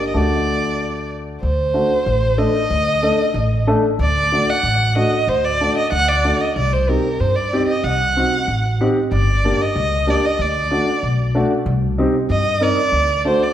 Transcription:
Already playing: upright bass G1, upright piano A#3 D4 G4
0.08 violin D#5
0.14 upright bass D2, upright piano A3 D4 F#4, violin D5
1.42 upright bass D2, violin C5
1.74 upright piano A3 D4 F#4
2.06 upright bass A1
2.38 upright piano A3 D4 A4, violin D#5
2.70 upright bass D2
3.02 upright piano A3 D4 A4
3.34 upright bass A1
3.67 upright piano A3 D4 A4
3.99 upright bass D2, violin D5
4.32 upright piano A3 D4 F#4
4.50 violin F#5
4.63 upright bass A1
4.96 upright piano A3 D4 F#4, violin D#5
5.27 upright bass D2, violin C5
5.45 violin D5
5.61 upright piano A3 D4 F#4
5.78 violin D#5
5.92 upright bass D2, violin F#5
6.08 violin D5
6.24 upright piano A3 D4 F#4
6.40 violin D#5
6.56 upright bass C2, violin D5
6.73 violin C5
6.89 upright piano C4 D#4 G4, violin A#4
7.20 upright bass G2, violin C5
7.35 violin D5
7.53 upright piano C4 D#4 G4
7.67 violin D#5
7.83 upright bass C2, violin F#5
8.16 upright piano C4 D#4 F#4
8.48 upright bass A1
8.81 upright piano C4 D#4 G4
9.12 upright bass G1, violin D5
9.45 upright piano A#3 D4 G4
9.62 violin D#5
9.76 upright bass C#2
10.07 upright piano A#3 D4 G4, violin D5
10.25 violin D#5
10.39 upright bass D2, violin D5
10.71 upright piano A3 D4 F#4
11.03 upright bass B1
11.35 upright piano A3 D4 F#4
11.66 upright bass C2
11.98 upright piano C4 D#4 G4
12.30 upright bass G2, violin D#5
12.61 upright piano C4 D#4 A#4, violin D5
12.92 upright bass D2
13.25 upright piano A3 D4 F#4, violin C5
13.43 violin D5

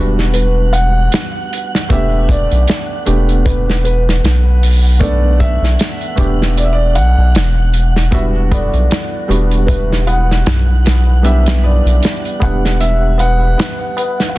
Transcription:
Already playing: sub bass E1, felt piano G3 B3 D4 F#4 G4 B4, synth texture F#5
0.19 snare
0.34 felt piano B4, closed hi-hat
0.73 felt piano F#5, closed hi-hat
1.12 snare, closed hi-hat
1.53 closed hi-hat
1.75 snare
1.89 sub bass E1, felt piano A3 B3 D4 G4 E5, kick, closed hi-hat
2.29 felt piano D5, kick, closed hi-hat
2.51 sub bass B1, closed hi-hat
2.68 snare, closed hi-hat
3.06 sub bass E1, felt piano A3 B3 D4 G4, closed hi-hat
3.29 closed hi-hat
3.45 felt piano B4, kick, closed hi-hat
3.70 snare
3.84 felt piano B4, closed hi-hat
4.09 snare
4.23 sub bass B1, snare, closed hi-hat
4.63 open hi-hat
4.99 felt piano A3 B3 D4 A4 D5, kick, closed hi-hat
5.40 felt piano E5, kick, closed hi-hat
5.62 sub bass B1, snare
5.79 snare, closed hi-hat
6.01 closed hi-hat
6.15 sub bass E1, felt piano A3 B3 D4 G4, kick, closed hi-hat
6.42 snare
6.57 felt piano D5, closed hi-hat
6.64 felt piano E5
6.73 felt piano D5
6.95 sub bass B1, felt piano F#5, closed hi-hat
7.18 sub bass B1
7.34 sub bass E1, snare, closed hi-hat
7.74 closed hi-hat
7.96 snare
8.11 sub bass E1, felt piano G3 B3 D4 F#4 E5, music box E4, kick, closed hi-hat, tabla na
8.51 music box A4, felt piano D5, kick, closed hi-hat, tabla na, tabla ge
8.72 sub bass B1, closed hi-hat, tabla na
8.89 music box E4, snare, closed hi-hat, tabla na
9.28 sub bass E1, felt piano G3 B3 D4 F#4, music box G4, closed hi-hat, tabla na
9.50 closed hi-hat, tabla na
9.67 felt piano B4, music box E5, kick, closed hi-hat, tabla na
9.90 snare, tabla na
10.07 music box E4, felt piano F#5, closed hi-hat, tabla na
10.29 snare, tabla na
10.46 sub bass B1, music box D4, snare, closed hi-hat, tabla na, tabla ge
10.68 tabla na
10.84 music box E4, snare, closed hi-hat, tabla na
11.07 tabla na
11.22 felt piano G3 B3 D4 G4 E5, music box E4, closed hi-hat, tabla na
11.46 snare, closed hi-hat
11.63 music box E4, felt piano D5, tabla na, tabla ge
11.85 sub bass B1, closed hi-hat, tabla na
12.02 music box D4, snare, closed hi-hat, tabla na
12.25 closed hi-hat
12.40 sub bass E1, felt piano G3 B3 D4 F#5, music box G4, kick, closed hi-hat, tabla na
12.62 snare, tabla na
12.80 music box E5, felt piano E5, closed hi-hat, tabla na
13.01 tabla na
13.18 music box B4, felt piano F#5, closed hi-hat, tabla na
13.40 tabla na
13.58 music box D4, snare, closed hi-hat, tabla na
13.79 tabla na
13.97 music box B4, closed hi-hat, tabla na
14.19 snare, tabla na
14.29 felt piano F#5
14.35 tabla na

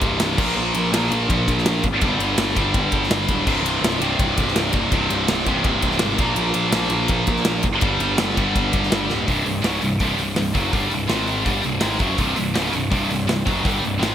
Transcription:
Already playing: distorted electric guitar C2 G2 C3
0.01 picked electric bass C1, kick, ride
0.20 picked electric bass C1, snare, ride
0.37 picked electric bass A#1, distorted electric guitar A#2 F3 A#3, kick, crash
0.56 picked electric bass A#1
0.74 picked electric bass A#1, ride
0.92 picked electric bass A#1, distorted electric guitar A#2 F3 A#3, snare, ride
1.04 snare
1.12 picked electric bass A#1, ride
1.29 picked electric bass A#1, kick, ride
1.48 picked electric bass A#1, kick, ride
1.58 snare
1.66 picked electric bass A#1, snare, ride
1.83 picked electric bass G#1, kick, ride
2.01 picked electric bass G1, distorted electric guitar G2 D3 G3, kick, ride
2.19 picked electric bass G1, ride
2.37 picked electric bass G1, snare, ride
2.48 snare
2.55 picked electric bass G1, distorted electric guitar G2 D3 G3, kick, ride
2.74 picked electric bass G1, kick, ride
2.92 picked electric bass G1, kick, ride
3.03 snare
3.10 picked electric bass G1, snare, ride
3.28 picked electric bass D1, kick, ride
3.46 picked electric bass C1, distorted electric guitar C2 G2 C3, kick, crash
3.63 picked electric bass C1, ride
3.81 picked electric bass C1, snare, ride
3.94 snare
4.00 picked electric bass C1, distorted electric guitar C2 G2 C3, ride
4.19 picked electric bass C1, kick, ride
4.37 picked electric bass C1, kick, ride
4.48 snare
4.55 picked electric bass C1, snare, ride
4.73 picked electric bass C1, kick, ride
4.92 picked electric bass C1, distorted electric guitar C2 G2 C3, kick, ride
5.10 picked electric bass C1, ride
5.28 picked electric bass C1, snare, ride
5.38 snare
5.46 picked electric bass C1, distorted electric guitar C2 G2 C3, kick, ride
5.64 picked electric bass C1, kick, ride
5.82 picked electric bass C1, kick, ride
5.91 snare
5.99 picked electric bass G#1, snare, ride
6.18 picked electric bass A#1, distorted electric guitar A#2 F3 A#3, kick, ride
6.35 picked electric bass A#1, ride
6.54 picked electric bass A#1, ride
6.71 picked electric bass A#1, distorted electric guitar A#2 F3, snare, ride
6.76 distorted electric guitar A#3
6.82 snare
6.90 picked electric bass A#1, ride
7.08 picked electric bass A#1, kick, ride
7.27 picked electric bass A#1, kick, ride
7.36 snare
7.45 picked electric bass A#1, snare, ride
7.63 picked electric bass F#1, kick, ride
7.80 picked electric bass G1, distorted electric guitar G2 D3 G3, kick, ride
8.00 picked electric bass G1, ride
8.18 picked electric bass G1, snare, ride
8.35 picked electric bass G1, distorted electric guitar G2 D3 G3, kick, ride
8.56 picked electric bass G1, kick, ride
8.73 picked electric bass G1, kick, ride
8.83 snare
8.91 picked electric bass G1, snare, ride
9.09 picked electric bass D1, snare
9.27 picked electric bass C1, distorted electric guitar C2 G2 C3, kick, open hi-hat
9.45 picked electric bass C1, distorted electric guitar C2 G2, open hi-hat
9.62 picked electric bass C#1, distorted electric guitar C#2 G#2 C#3, snare, open hi-hat
9.73 snare
9.82 picked electric bass C1, distorted electric guitar C2 G2, open hi-hat
9.99 picked electric bass C1, distorted electric guitar C2 G2 C3, kick, open hi-hat
10.17 picked electric bass C1, distorted electric guitar C2 G2, open hi-hat
10.36 picked electric bass C1, distorted electric guitar C2 G2, snare, open hi-hat
10.54 picked electric bass F#1, distorted electric guitar F#2 C#3 F#3, kick, open hi-hat
10.72 picked electric bass G1, distorted electric guitar G2 D3 G3, kick, open hi-hat
10.89 picked electric bass C1, distorted electric guitar C2 G2, open hi-hat
11.07 picked electric bass G#1, distorted electric guitar G#2 D#3 G#3, snare, open hi-hat
11.28 open hi-hat
11.43 picked electric bass G1, distorted electric guitar G2 D3 G3, kick, open hi-hat
11.62 picked electric bass C1, distorted electric guitar C2 G2, open hi-hat
11.80 picked electric bass G#1, distorted electric guitar G#2 D#3 G#3, snare, open hi-hat
11.99 picked electric bass F#1, distorted electric guitar F#2 C#3 F#3, kick, open hi-hat
12.18 picked electric bass C1, distorted electric guitar C2 G2 C3, kick, open hi-hat
12.36 picked electric bass C1, distorted electric guitar C2 G2, open hi-hat
12.54 picked electric bass C#1, distorted electric guitar C#2 G#2 C#3, snare, open hi-hat
12.66 snare
12.72 picked electric bass C1, distorted electric guitar C2 G2, open hi-hat
12.91 picked electric bass C1, distorted electric guitar C2 G2 C3, kick, open hi-hat
13.09 picked electric bass C1, distorted electric guitar C2 G2, open hi-hat
13.27 picked electric bass C1, distorted electric guitar C2 G2, snare, open hi-hat
13.46 picked electric bass F#1, distorted electric guitar F#2 C#3 F#3, kick, open hi-hat
13.64 picked electric bass G1, distorted electric guitar G2 D3 G3, kick, open hi-hat
13.81 picked electric bass C1, distorted electric guitar C2 G2, open hi-hat
13.99 picked electric bass G#1, distorted electric guitar G#2 D#3 G#3, snare, open hi-hat

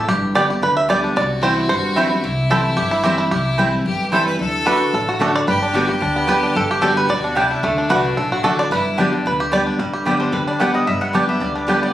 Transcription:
0.08 upright bass G1, steel-string acoustic guitar G2, five-string banjo G4
0.35 steel-string acoustic guitar D3 G3 B3 G4, mandolin B3 G4 D5 G5, five-string banjo D5
0.50 steel-string acoustic guitar B3 G4, five-string banjo G4
0.62 upright bass D2, steel-string acoustic guitar D3, five-string banjo B4
0.77 five-string banjo E5
0.89 steel-string acoustic guitar D3 G3 B3 G4, mandolin B3 G4 D5 G5, five-string banjo D5
1.04 five-string banjo D4
1.16 upright bass C2, steel-string acoustic guitar C3, fiddle F#4, five-string banjo D5
1.42 steel-string acoustic guitar E3 G3 C4 E4, mandolin C4 E4 C5 G5, five-string banjo C5
1.69 upright bass G1, steel-string acoustic guitar G2, five-string banjo C5
1.96 steel-string acoustic guitar E3 G3 C4 E4, mandolin C4 E4 C5 G5, five-string banjo E4
2.11 steel-string acoustic guitar C4 E4
2.23 upright bass C2, steel-string acoustic guitar C3, fiddle E4
2.50 steel-string acoustic guitar E3 G3 C4 E4, mandolin C4 E4 C5 G5, five-string banjo A4
2.77 upright bass G1, steel-string acoustic guitar G2, five-string banjo G4
2.91 five-string banjo E4
3.03 steel-string acoustic guitar E3 G3 C4 E4, mandolin C4 E4 C5 G5, five-string banjo G4
3.18 five-string banjo E4
3.31 upright bass C2, steel-string acoustic guitar C3, fiddle E4, five-string banjo G4
3.58 steel-string acoustic guitar E3 G3 C4 E4, mandolin C4 E4 C5 G5
3.85 upright bass G1, steel-string acoustic guitar G2, fiddle G4
4.12 steel-string acoustic guitar E3 G3 C4 E4, mandolin C4 E4 C5 G5, fiddle A4
4.27 fiddle B4
4.39 upright bass D2, steel-string acoustic guitar D3, fiddle A4
4.65 steel-string acoustic guitar D3 A3 D4 F#4, mandolin A3 F#4 D5 F#5, five-string banjo B4
4.94 upright bass A1, steel-string acoustic guitar A2, five-string banjo A4
5.09 five-string banjo F#4
5.19 steel-string acoustic guitar D3 A3 D4 F#4, mandolin A3 F#4 D5 F#5, five-string banjo A4
5.36 five-string banjo D5
5.47 upright bass G1, steel-string acoustic guitar G2, fiddle G4, five-string banjo B4
5.62 five-string banjo D4
5.73 steel-string acoustic guitar D3 G3 B3 G4, five-string banjo G3, mandolin B3 G4 D5 G5, fiddle F#4
5.88 steel-string acoustic guitar B3 G4, fiddle G4, five-string banjo G4
6.00 upright bass D2, steel-string acoustic guitar D3, five-string banjo D4
6.16 five-string banjo B3
6.27 steel-string acoustic guitar D3 G3 B3 G4, mandolin B3 G4 D5 G5, five-string banjo B4
6.43 five-string banjo D4
6.55 upright bass G1, steel-string acoustic guitar G2, five-string banjo A4
6.71 five-string banjo G4
6.81 steel-string acoustic guitar D3 G3 B3 G4, mandolin B3 G4 D5 G5, fiddle F#4, five-string banjo A4
6.97 five-string banjo B4
7.09 upright bass D2, steel-string acoustic guitar B2, five-string banjo D5
7.24 five-string banjo D4
7.35 steel-string acoustic guitar C3, five-string banjo G3, mandolin B3 G4 D5 G5, fiddle E4
7.51 five-string banjo D4
7.63 upright bass D2, steel-string acoustic guitar D3, five-string banjo A3, fiddle D4
7.78 five-string banjo D4
7.89 upright bass C2, steel-string acoustic guitar D3 A3 D4 F#4, mandolin A3 F#4 D5 F#5, five-string banjo B4
8.05 five-string banjo D3, steel-string acoustic guitar D4 F#4
8.17 upright bass B1, steel-string acoustic guitar A2, five-string banjo A4
8.32 five-string banjo F#4
8.43 upright bass A1, steel-string acoustic guitar D3 A3 D4 F#4, mandolin A3 F#4 D5 F#5, five-string banjo A4
8.59 five-string banjo D5
8.71 upright bass G1, steel-string acoustic guitar G2, fiddle E4, five-string banjo B4
8.98 steel-string acoustic guitar D3 G3 B3 G4, mandolin B3 G4 D5 G5, fiddle D4, five-string banjo D4
9.12 five-string banjo D3, steel-string acoustic guitar B3 G4
9.25 upright bass D2, steel-string acoustic guitar D3, five-string banjo B4
9.40 five-string banjo G4
9.51 steel-string acoustic guitar D3 G3 B3 G4, mandolin B3 G4 D5 G5, five-string banjo D5
9.67 five-string banjo D4
9.79 upright bass G1, steel-string acoustic guitar G2, five-string banjo G3
9.93 five-string banjo G4
10.05 steel-string acoustic guitar D3 G3 B3 G4, five-string banjo G3, mandolin B3 G4 D5 G5
10.20 five-string banjo D4, mandolin C5
10.32 upright bass D2, steel-string acoustic guitar D3, five-string banjo G3, mandolin B4
10.48 five-string banjo D4, mandolin D5
10.60 steel-string acoustic guitar D3 G3 B3 G4, mandolin B3 G4 D5 F#5 G5, five-string banjo B3
10.74 five-string banjo G3, mandolin D#5
10.87 upright bass G1, steel-string acoustic guitar G2, five-string banjo G3, mandolin E5
11.01 five-string banjo B3, mandolin F#5
11.13 steel-string acoustic guitar D3 G3 B3 G4, mandolin B3 G4 D5 G5, five-string banjo D4
11.27 five-string banjo B3, steel-string acoustic guitar B3 G4, mandolin E5
11.40 upright bass D2, steel-string acoustic guitar D3, five-string banjo G3, mandolin D5
11.55 five-string banjo D4, mandolin G4
11.67 steel-string acoustic guitar D3 G3 B3 G4, five-string banjo D3, mandolin B3 G4 B4 D5 G5
11.83 five-string banjo B3, mandolin D5

